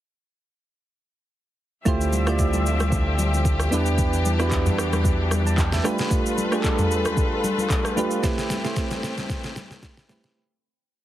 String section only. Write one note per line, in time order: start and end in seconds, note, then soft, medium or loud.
1.86 3.70 D3 medium
1.86 3.70 F3 medium
1.86 3.70 C4 medium
1.86 5.80 G4 medium
1.86 3.70 E5 medium
3.72 5.82 E3 medium
3.72 5.82 D4 medium
5.84 8.21 G3 medium
5.84 8.21 F4 medium
5.84 8.21 A4 medium
5.84 8.21 B4 medium
8.23 10.33 A3 medium
8.23 10.33 C4 medium
8.23 10.33 G4 medium